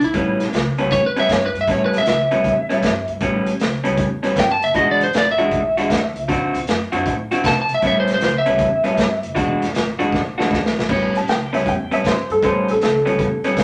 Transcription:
0.00 upright bass B1, lead electric guitar E4, closed hi-hat
0.14 upright bass A1, clean electric guitar A2 G3 B3 C#4, kick, closed hi-hat
0.40 upright bass A1, snare, closed hi-hat
0.52 upright bass C#2, snare, closed hi-hat
0.77 upright bass C#2, clean electric guitar A2 G3 B3 C#4, closed hi-hat
0.91 upright bass E2, lead electric guitar C#5, kick, closed hi-hat
1.06 lead electric guitar B4
1.16 clean electric guitar A2 G3 B3 C#4, lead electric guitar E5, closed hi-hat
1.29 upright bass G2, lead electric guitar C#5, kick, snare, closed hi-hat
1.46 lead electric guitar B4
1.53 upright bass G2, closed hi-hat
1.61 lead electric guitar E5
1.67 upright bass A1, clean electric guitar A2 G3 B3 C#4, lead electric guitar C#5, kick, closed hi-hat
1.86 lead electric guitar B4
1.93 upright bass A1, snare, closed hi-hat
1.98 lead electric guitar E5
2.06 upright bass C#2, lead electric guitar E5, snare, closed hi-hat
2.31 upright bass C#2, clean electric guitar A2 G3 B3 C#4, closed hi-hat
2.44 upright bass E2, kick, closed hi-hat
2.69 clean electric guitar A2 G3 B3 C#4, closed hi-hat
2.83 upright bass G2, kick, snare, closed hi-hat
3.08 upright bass G2, closed hi-hat
3.21 upright bass A1, clean electric guitar A2 G3 B3 C#4, kick, closed hi-hat
3.46 upright bass A1, closed hi-hat
3.60 upright bass C#2, snare, closed hi-hat
3.84 upright bass C#2, clean electric guitar A2 G3 B3 C#4, closed hi-hat
3.97 upright bass E2, kick, closed hi-hat
4.23 clean electric guitar A2 G3 B3 C#4, closed hi-hat
4.36 upright bass G2, lead electric guitar G5, kick, snare, closed hi-hat
4.52 lead electric guitar A5
4.62 upright bass F#1, lead electric guitar E5, closed hi-hat
4.74 upright bass E1, clean electric guitar E3 G#3 D4 F#4, lead electric guitar D#5, kick, closed hi-hat
4.91 lead electric guitar D5
5.01 upright bass E1, lead electric guitar C5, closed hi-hat
5.13 upright bass G#1, snare, closed hi-hat
5.18 lead electric guitar D5
5.31 lead electric guitar E5
5.38 upright bass G#1, clean electric guitar E3 G#3 D4 F#4, closed hi-hat
5.51 upright bass B1, kick, closed hi-hat
5.77 clean electric guitar E3 G#3 D4 F#4, closed hi-hat
5.90 upright bass D2, kick, snare, closed hi-hat
6.14 upright bass C#2, closed hi-hat
6.28 upright bass D2, clean electric guitar D3 C4 E4 F#4, kick, closed hi-hat
6.54 upright bass D2, closed hi-hat
6.67 upright bass F#2, snare, closed hi-hat
6.92 upright bass F#2, clean electric guitar D3 C4 E4 F#4, closed hi-hat
7.06 upright bass A2, kick, closed hi-hat
7.31 clean electric guitar D3 C4 E4 F#4, closed hi-hat
7.44 upright bass C3, lead electric guitar A5, kick, snare, closed hi-hat
7.62 lead electric guitar A5
7.69 upright bass G#1, closed hi-hat
7.74 lead electric guitar E5
7.82 upright bass A1, clean electric guitar A2 G3 B3 C#4, kick, closed hi-hat
7.87 lead electric guitar E5
8.00 lead electric guitar C5
8.07 upright bass A1, snare, closed hi-hat
8.14 lead electric guitar C5
8.21 upright bass C#2, snare, closed hi-hat
8.25 lead electric guitar C5
8.38 lead electric guitar E5
8.46 upright bass C#2, clean electric guitar A2 G3 B3 C#4, closed hi-hat
8.58 upright bass E2, kick, closed hi-hat
8.84 clean electric guitar A2 G3 B3 C#4, closed hi-hat
8.97 upright bass G2, kick, snare, closed hi-hat
9.23 upright bass F#1, closed hi-hat
9.35 upright bass E1, clean electric guitar E3 G#3 D4 F#4, kick, closed hi-hat
9.62 upright bass E1, snare, closed hi-hat
9.74 upright bass G#1, snare, closed hi-hat
9.99 upright bass G#1, clean electric guitar E3 G#3 D4 F#4, closed hi-hat
10.12 upright bass B1, kick, snare
10.38 clean electric guitar E3 G#3 D4 F#4, snare
10.51 upright bass D2, kick, snare
10.66 snare
10.77 upright bass B1, snare
10.89 upright bass A1, clean electric guitar A2 G3 B3 C#4, kick, crash
11.14 upright bass A1, upright piano A5, closed hi-hat
11.28 upright bass C#2, upright piano G5, snare, closed hi-hat
11.53 upright bass C#2, clean electric guitar A2 G3 B3 C#4, upright piano E5, snare, closed hi-hat
11.66 upright bass E2, upright piano G5, kick, closed hi-hat
11.91 clean electric guitar A2 G3 B3 C#4, upright piano E5, closed hi-hat
12.04 upright bass G2, upright piano C5, kick, snare, closed hi-hat
12.30 upright bass G2, upright piano A4, closed hi-hat
12.43 upright bass A1, clean electric guitar A2 G3 B3 C#4, upright piano C5, kick, closed hi-hat
12.68 upright bass A1, upright piano A4, closed hi-hat
12.81 upright bass C#2, upright piano A4, snare, closed hi-hat
13.06 upright bass C#2, clean electric guitar A2 G3 B3 C#4, closed hi-hat
13.18 upright bass E2, kick, closed hi-hat
13.44 clean electric guitar A2 G3 B3 C#4, closed hi-hat
13.57 upright bass G2, kick, snare, closed hi-hat

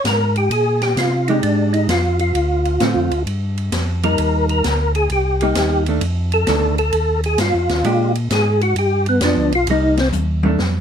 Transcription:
0.04 tonewheel organ G#2 A#4, snare, hi-hat pedal, ride
0.36 tonewheel organ G4, ride
0.50 tonewheel organ A#2 G#4, ride
0.82 tonewheel organ G4, snare, ride
0.96 tonewheel organ C3 F4, snare, hi-hat pedal, ride
1.28 hollow-body jazz guitar G#3 D4 G4, tonewheel organ D#4, ride
1.43 tonewheel organ G#2 D4, ride
1.73 tonewheel organ D#4, ride
1.88 tonewheel organ F2 F4, snare, hi-hat pedal, ride
2.19 tonewheel organ F4, ride
2.34 tonewheel organ D2, ride
2.65 ride
2.80 tonewheel organ A2, hollow-body jazz guitar D3 A3 C4 F4, snare, hi-hat pedal, ride
2.96 tonewheel organ F2
3.11 tonewheel organ D2, ride
3.26 tonewheel organ G2, ride
3.57 ride
3.71 tonewheel organ F2, snare, hi-hat pedal, ride
4.03 hollow-body jazz guitar G3 A#3 D#4, tonewheel organ A#4, ride
4.18 tonewheel organ D#2, ride
4.49 tonewheel organ A#4, ride
4.64 tonewheel organ D2, snare, hi-hat pedal, ride
4.95 tonewheel organ G#4, ride
5.09 tonewheel organ C2 G4, ride
5.41 hollow-body jazz guitar G3 A#3 D#4, ride
5.55 tonewheel organ D#2, snare, hi-hat pedal, ride
5.86 hollow-body jazz guitar D#3 A3 D4, ride
6.01 tonewheel organ F2, ride
6.32 tonewheel organ A4, ride
6.47 tonewheel organ D2, hollow-body jazz guitar D#3 A3 D4, snare, hi-hat pedal, ride
6.78 tonewheel organ A4, ride
6.92 tonewheel organ D#2, ride
7.23 tonewheel organ G#4, ride
7.38 tonewheel organ G2 F4, snare, hi-hat pedal, ride
7.54 tonewheel organ F2
7.69 tonewheel organ D#2, snare, ride
7.84 tonewheel organ A#2, hollow-body jazz guitar G#3 D4 G4, ride
8.15 ride
8.30 tonewheel organ G#2 G#4, snare, hi-hat pedal, ride
8.61 tonewheel organ F#4, ride
8.76 tonewheel organ G2 G4, ride
9.06 tonewheel organ B3, ride
9.21 tonewheel organ F2 D4, hollow-body jazz guitar F3 B3 D4, snare, hi-hat pedal, ride
9.37 tonewheel organ D2
9.52 tonewheel organ B1 F4, ride
9.67 tonewheel organ C2 D#4, hollow-body jazz guitar G3 A#3, ride
9.71 hollow-body jazz guitar D#4
9.97 tonewheel organ C4, snare, ride
10.12 tonewheel organ D#2, hi-hat pedal, high tom
10.43 hollow-body jazz guitar D#3 A3 D4, high tom
10.59 tonewheel organ F2, snare

